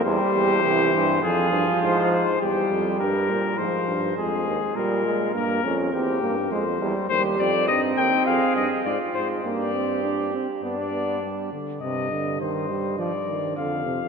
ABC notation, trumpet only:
X:1
M:4/4
L:1/8
Q:1/4=102
K:Fm
V:1 name="Trumpet"
c4 A2 c c | G2 B2 c2 A2 | B2 B2 G2 c2 | [K:Cm] c d e g f e d c |
d3 z d3 z | e2 c2 d2 f2 |]